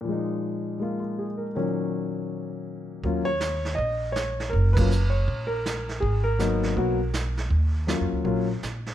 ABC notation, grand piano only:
X:1
M:4/4
L:1/16
Q:"Swing" 1/4=161
K:Ebm
V:1 name="Grand piano"
z8 z2 F2 A2 B2- | B z12 z3 | z2 d6 e4 d4 | B2 c4 d4 B6 |
A2 B12 z2 | z16 |]
V:2 name="Grand piano"
[B,,F,A,E]8 [A,B,F]8 | [B,,E,G,D]16 | [G,B,DF]2 z12 z2 | z2 [G,B,DF]2 z12 |
z4 [G,B,CE]4 [G,B,CG]2 z6 | z4 [G,B,DF]4 [G,B,DF]2 z6 |]